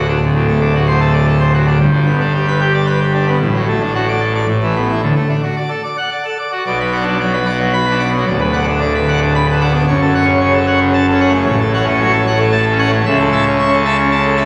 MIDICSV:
0, 0, Header, 1, 2, 480
1, 0, Start_track
1, 0, Key_signature, 2, "major"
1, 0, Tempo, 531915
1, 195, Time_signature, 3, 2, 24, 8
1, 3556, Tempo, 542005
1, 5963, Key_signature, 2, "minor"
1, 7396, Tempo, 531444
1, 12973, End_track
2, 0, Start_track
2, 0, Title_t, "Pipe organ"
2, 0, Program_c, 0, 19
2, 0, Note_on_c, 0, 26, 81
2, 0, Note_on_c, 0, 38, 75
2, 77, Note_on_c, 0, 62, 72
2, 158, Note_off_c, 0, 26, 0
2, 159, Note_off_c, 0, 38, 0
2, 178, Note_off_c, 0, 62, 0
2, 192, Note_on_c, 0, 26, 86
2, 196, Note_on_c, 0, 38, 90
2, 316, Note_on_c, 0, 45, 68
2, 422, Note_off_c, 0, 45, 0
2, 434, Note_on_c, 0, 57, 72
2, 540, Note_off_c, 0, 57, 0
2, 550, Note_on_c, 0, 62, 80
2, 657, Note_off_c, 0, 62, 0
2, 676, Note_on_c, 0, 66, 79
2, 780, Note_off_c, 0, 66, 0
2, 788, Note_on_c, 0, 72, 77
2, 896, Note_off_c, 0, 72, 0
2, 905, Note_on_c, 0, 69, 87
2, 1014, Note_off_c, 0, 69, 0
2, 1023, Note_on_c, 0, 74, 114
2, 1133, Note_off_c, 0, 74, 0
2, 1153, Note_on_c, 0, 69, 94
2, 1259, Note_off_c, 0, 69, 0
2, 1262, Note_on_c, 0, 72, 87
2, 1372, Note_off_c, 0, 72, 0
2, 1388, Note_on_c, 0, 66, 79
2, 1496, Note_off_c, 0, 66, 0
2, 1504, Note_on_c, 0, 62, 70
2, 1592, Note_off_c, 0, 26, 0
2, 1594, Note_off_c, 0, 38, 0
2, 1609, Note_off_c, 0, 62, 0
2, 1621, Note_on_c, 0, 31, 97
2, 1622, Note_on_c, 0, 43, 105
2, 1743, Note_on_c, 0, 50, 75
2, 1853, Note_off_c, 0, 50, 0
2, 1865, Note_on_c, 0, 59, 81
2, 1975, Note_off_c, 0, 59, 0
2, 1988, Note_on_c, 0, 62, 79
2, 2097, Note_off_c, 0, 62, 0
2, 2110, Note_on_c, 0, 67, 74
2, 2218, Note_off_c, 0, 67, 0
2, 2236, Note_on_c, 0, 71, 81
2, 2341, Note_off_c, 0, 71, 0
2, 2352, Note_on_c, 0, 67, 94
2, 2459, Note_off_c, 0, 67, 0
2, 2468, Note_on_c, 0, 74, 101
2, 2577, Note_off_c, 0, 74, 0
2, 2587, Note_on_c, 0, 71, 97
2, 2696, Note_off_c, 0, 71, 0
2, 2707, Note_on_c, 0, 67, 82
2, 2816, Note_off_c, 0, 67, 0
2, 2835, Note_on_c, 0, 62, 76
2, 2941, Note_off_c, 0, 62, 0
2, 2953, Note_on_c, 0, 59, 78
2, 3032, Note_off_c, 0, 31, 0
2, 3033, Note_off_c, 0, 43, 0
2, 3055, Note_off_c, 0, 59, 0
2, 3075, Note_on_c, 0, 33, 92
2, 3075, Note_on_c, 0, 45, 92
2, 3195, Note_on_c, 0, 54, 72
2, 3302, Note_off_c, 0, 54, 0
2, 3320, Note_on_c, 0, 57, 78
2, 3425, Note_off_c, 0, 57, 0
2, 3437, Note_on_c, 0, 62, 82
2, 3544, Note_off_c, 0, 62, 0
2, 3562, Note_on_c, 0, 66, 73
2, 3665, Note_off_c, 0, 66, 0
2, 3684, Note_on_c, 0, 74, 93
2, 3786, Note_off_c, 0, 74, 0
2, 3788, Note_on_c, 0, 69, 82
2, 3897, Note_off_c, 0, 69, 0
2, 3922, Note_on_c, 0, 74, 77
2, 4006, Note_off_c, 0, 33, 0
2, 4006, Note_off_c, 0, 45, 0
2, 4020, Note_off_c, 0, 74, 0
2, 4036, Note_on_c, 0, 45, 100
2, 4041, Note_on_c, 0, 33, 100
2, 4161, Note_on_c, 0, 52, 57
2, 4265, Note_off_c, 0, 52, 0
2, 4282, Note_on_c, 0, 59, 73
2, 4386, Note_off_c, 0, 59, 0
2, 4396, Note_on_c, 0, 64, 89
2, 4497, Note_off_c, 0, 64, 0
2, 4501, Note_off_c, 0, 45, 0
2, 4504, Note_off_c, 0, 33, 0
2, 4510, Note_on_c, 0, 38, 81
2, 4511, Note_on_c, 0, 50, 69
2, 4614, Note_off_c, 0, 38, 0
2, 4615, Note_off_c, 0, 50, 0
2, 4634, Note_on_c, 0, 57, 63
2, 4742, Note_off_c, 0, 57, 0
2, 4751, Note_on_c, 0, 62, 59
2, 4860, Note_off_c, 0, 62, 0
2, 4875, Note_on_c, 0, 66, 59
2, 4983, Note_off_c, 0, 66, 0
2, 4996, Note_on_c, 0, 74, 57
2, 5103, Note_off_c, 0, 74, 0
2, 5108, Note_on_c, 0, 69, 58
2, 5219, Note_off_c, 0, 69, 0
2, 5235, Note_on_c, 0, 74, 68
2, 5344, Note_off_c, 0, 74, 0
2, 5356, Note_on_c, 0, 78, 90
2, 5465, Note_off_c, 0, 78, 0
2, 5480, Note_on_c, 0, 74, 75
2, 5588, Note_off_c, 0, 74, 0
2, 5599, Note_on_c, 0, 69, 64
2, 5708, Note_off_c, 0, 69, 0
2, 5725, Note_on_c, 0, 74, 61
2, 5832, Note_off_c, 0, 74, 0
2, 5840, Note_on_c, 0, 66, 58
2, 5944, Note_off_c, 0, 66, 0
2, 5968, Note_on_c, 0, 74, 62
2, 5972, Note_on_c, 0, 47, 78
2, 5974, Note_on_c, 0, 35, 85
2, 6073, Note_off_c, 0, 74, 0
2, 6092, Note_on_c, 0, 71, 59
2, 6195, Note_off_c, 0, 71, 0
2, 6200, Note_on_c, 0, 78, 68
2, 6204, Note_on_c, 0, 74, 59
2, 6279, Note_on_c, 0, 62, 64
2, 6303, Note_off_c, 0, 78, 0
2, 6305, Note_off_c, 0, 74, 0
2, 6330, Note_on_c, 0, 54, 67
2, 6423, Note_off_c, 0, 54, 0
2, 6423, Note_off_c, 0, 62, 0
2, 6439, Note_on_c, 0, 74, 61
2, 6441, Note_on_c, 0, 54, 54
2, 6547, Note_off_c, 0, 74, 0
2, 6560, Note_on_c, 0, 71, 65
2, 6584, Note_off_c, 0, 54, 0
2, 6668, Note_off_c, 0, 71, 0
2, 6672, Note_on_c, 0, 74, 62
2, 6675, Note_on_c, 0, 78, 65
2, 6778, Note_off_c, 0, 74, 0
2, 6779, Note_off_c, 0, 78, 0
2, 6795, Note_on_c, 0, 54, 73
2, 6904, Note_off_c, 0, 54, 0
2, 6916, Note_on_c, 0, 83, 114
2, 7024, Note_off_c, 0, 83, 0
2, 7027, Note_on_c, 0, 71, 65
2, 7068, Note_on_c, 0, 62, 62
2, 7138, Note_off_c, 0, 71, 0
2, 7143, Note_on_c, 0, 78, 69
2, 7144, Note_on_c, 0, 74, 64
2, 7214, Note_off_c, 0, 62, 0
2, 7233, Note_on_c, 0, 59, 66
2, 7250, Note_off_c, 0, 78, 0
2, 7251, Note_off_c, 0, 74, 0
2, 7280, Note_on_c, 0, 54, 65
2, 7364, Note_off_c, 0, 47, 0
2, 7365, Note_off_c, 0, 35, 0
2, 7369, Note_off_c, 0, 59, 0
2, 7379, Note_off_c, 0, 54, 0
2, 7389, Note_on_c, 0, 74, 69
2, 7390, Note_on_c, 0, 38, 80
2, 7392, Note_on_c, 0, 26, 77
2, 7500, Note_off_c, 0, 74, 0
2, 7510, Note_on_c, 0, 71, 59
2, 7620, Note_off_c, 0, 71, 0
2, 7628, Note_on_c, 0, 78, 78
2, 7631, Note_on_c, 0, 74, 67
2, 7714, Note_on_c, 0, 62, 64
2, 7734, Note_off_c, 0, 78, 0
2, 7736, Note_off_c, 0, 74, 0
2, 7737, Note_off_c, 0, 62, 0
2, 7755, Note_on_c, 0, 62, 69
2, 7863, Note_off_c, 0, 62, 0
2, 7873, Note_on_c, 0, 50, 58
2, 7873, Note_on_c, 0, 74, 72
2, 7983, Note_off_c, 0, 74, 0
2, 8000, Note_on_c, 0, 71, 73
2, 8018, Note_off_c, 0, 50, 0
2, 8107, Note_off_c, 0, 71, 0
2, 8122, Note_on_c, 0, 74, 71
2, 8125, Note_on_c, 0, 78, 72
2, 8223, Note_off_c, 0, 74, 0
2, 8224, Note_off_c, 0, 78, 0
2, 8249, Note_on_c, 0, 62, 72
2, 8351, Note_off_c, 0, 62, 0
2, 8366, Note_on_c, 0, 83, 117
2, 8470, Note_off_c, 0, 83, 0
2, 8495, Note_on_c, 0, 71, 74
2, 8525, Note_on_c, 0, 62, 67
2, 8595, Note_off_c, 0, 71, 0
2, 8601, Note_on_c, 0, 78, 75
2, 8602, Note_on_c, 0, 74, 67
2, 8665, Note_off_c, 0, 62, 0
2, 8682, Note_on_c, 0, 59, 66
2, 8702, Note_off_c, 0, 78, 0
2, 8703, Note_off_c, 0, 74, 0
2, 8717, Note_on_c, 0, 62, 71
2, 8800, Note_off_c, 0, 38, 0
2, 8801, Note_off_c, 0, 26, 0
2, 8817, Note_off_c, 0, 59, 0
2, 8820, Note_off_c, 0, 62, 0
2, 8838, Note_on_c, 0, 42, 80
2, 8841, Note_on_c, 0, 73, 74
2, 8842, Note_on_c, 0, 30, 81
2, 8947, Note_off_c, 0, 73, 0
2, 8969, Note_on_c, 0, 69, 73
2, 9072, Note_off_c, 0, 69, 0
2, 9086, Note_on_c, 0, 78, 77
2, 9088, Note_on_c, 0, 73, 66
2, 9168, Note_on_c, 0, 61, 76
2, 9185, Note_off_c, 0, 78, 0
2, 9186, Note_off_c, 0, 73, 0
2, 9203, Note_on_c, 0, 49, 82
2, 9300, Note_off_c, 0, 49, 0
2, 9307, Note_off_c, 0, 61, 0
2, 9318, Note_on_c, 0, 49, 67
2, 9320, Note_on_c, 0, 73, 68
2, 9427, Note_off_c, 0, 73, 0
2, 9433, Note_on_c, 0, 69, 79
2, 9461, Note_off_c, 0, 49, 0
2, 9543, Note_off_c, 0, 69, 0
2, 9559, Note_on_c, 0, 73, 70
2, 9559, Note_on_c, 0, 78, 76
2, 9661, Note_off_c, 0, 73, 0
2, 9661, Note_off_c, 0, 78, 0
2, 9679, Note_on_c, 0, 49, 82
2, 9786, Note_off_c, 0, 49, 0
2, 9799, Note_on_c, 0, 81, 127
2, 9906, Note_off_c, 0, 81, 0
2, 9930, Note_on_c, 0, 69, 74
2, 9971, Note_on_c, 0, 61, 85
2, 10032, Note_off_c, 0, 69, 0
2, 10042, Note_on_c, 0, 73, 70
2, 10045, Note_on_c, 0, 78, 80
2, 10109, Note_off_c, 0, 61, 0
2, 10116, Note_on_c, 0, 57, 83
2, 10143, Note_off_c, 0, 73, 0
2, 10144, Note_off_c, 0, 78, 0
2, 10159, Note_on_c, 0, 49, 82
2, 10243, Note_off_c, 0, 42, 0
2, 10245, Note_off_c, 0, 30, 0
2, 10254, Note_off_c, 0, 57, 0
2, 10261, Note_off_c, 0, 49, 0
2, 10273, Note_on_c, 0, 45, 91
2, 10273, Note_on_c, 0, 73, 89
2, 10274, Note_on_c, 0, 33, 88
2, 10383, Note_off_c, 0, 73, 0
2, 10397, Note_on_c, 0, 69, 74
2, 10505, Note_off_c, 0, 69, 0
2, 10521, Note_on_c, 0, 78, 90
2, 10526, Note_on_c, 0, 73, 71
2, 10603, Note_on_c, 0, 61, 78
2, 10623, Note_off_c, 0, 78, 0
2, 10626, Note_off_c, 0, 73, 0
2, 10641, Note_on_c, 0, 57, 81
2, 10745, Note_off_c, 0, 61, 0
2, 10748, Note_off_c, 0, 57, 0
2, 10761, Note_on_c, 0, 73, 79
2, 10763, Note_on_c, 0, 54, 71
2, 10868, Note_off_c, 0, 73, 0
2, 10877, Note_on_c, 0, 69, 77
2, 10904, Note_off_c, 0, 54, 0
2, 10985, Note_off_c, 0, 69, 0
2, 11000, Note_on_c, 0, 73, 74
2, 11005, Note_on_c, 0, 78, 88
2, 11102, Note_off_c, 0, 73, 0
2, 11104, Note_off_c, 0, 78, 0
2, 11116, Note_on_c, 0, 57, 78
2, 11224, Note_off_c, 0, 57, 0
2, 11229, Note_on_c, 0, 81, 127
2, 11339, Note_off_c, 0, 81, 0
2, 11351, Note_on_c, 0, 69, 74
2, 11399, Note_on_c, 0, 61, 80
2, 11460, Note_off_c, 0, 69, 0
2, 11471, Note_on_c, 0, 78, 90
2, 11473, Note_on_c, 0, 73, 78
2, 11540, Note_off_c, 0, 61, 0
2, 11556, Note_on_c, 0, 57, 84
2, 11575, Note_off_c, 0, 78, 0
2, 11576, Note_off_c, 0, 73, 0
2, 11580, Note_off_c, 0, 57, 0
2, 11598, Note_on_c, 0, 57, 88
2, 11676, Note_off_c, 0, 33, 0
2, 11676, Note_off_c, 0, 45, 0
2, 11699, Note_off_c, 0, 57, 0
2, 11714, Note_on_c, 0, 37, 91
2, 11715, Note_on_c, 0, 49, 108
2, 11718, Note_on_c, 0, 76, 83
2, 11823, Note_off_c, 0, 76, 0
2, 11842, Note_on_c, 0, 69, 79
2, 11945, Note_off_c, 0, 69, 0
2, 11956, Note_on_c, 0, 81, 110
2, 11958, Note_on_c, 0, 76, 77
2, 12057, Note_off_c, 0, 81, 0
2, 12058, Note_off_c, 0, 76, 0
2, 12083, Note_on_c, 0, 61, 77
2, 12178, Note_off_c, 0, 61, 0
2, 12196, Note_on_c, 0, 61, 69
2, 12198, Note_on_c, 0, 76, 75
2, 12303, Note_off_c, 0, 76, 0
2, 12318, Note_on_c, 0, 69, 85
2, 12338, Note_off_c, 0, 61, 0
2, 12423, Note_off_c, 0, 69, 0
2, 12430, Note_on_c, 0, 81, 90
2, 12433, Note_on_c, 0, 76, 76
2, 12534, Note_off_c, 0, 81, 0
2, 12536, Note_off_c, 0, 76, 0
2, 12546, Note_on_c, 0, 61, 88
2, 12657, Note_off_c, 0, 61, 0
2, 12668, Note_on_c, 0, 81, 102
2, 12778, Note_off_c, 0, 81, 0
2, 12786, Note_on_c, 0, 69, 87
2, 12897, Note_off_c, 0, 69, 0
2, 12901, Note_on_c, 0, 81, 90
2, 12904, Note_on_c, 0, 76, 74
2, 12973, Note_off_c, 0, 37, 0
2, 12973, Note_off_c, 0, 49, 0
2, 12973, Note_off_c, 0, 76, 0
2, 12973, Note_off_c, 0, 81, 0
2, 12973, End_track
0, 0, End_of_file